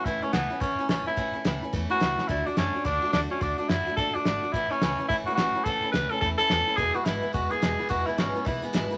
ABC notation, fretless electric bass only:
X:1
M:4/4
L:1/8
Q:"Swing" 1/4=214
K:A
V:1 name="Fretless electric bass" clef=bass
A,,, z C,, z A,,, z A,,, z | A,,, z C,, z E,, z C,, z | D,, z F,, z D,, z D,, z | D,, z F,, z A,, z G,,, z |
A,,, z C,, z A,,, z A,,, z | A,,, z C,, z E,, z E,, z | E,,, z G,,, z E,,, z E,,, z | E,,, z G,,, z B,,, z G,,, z |]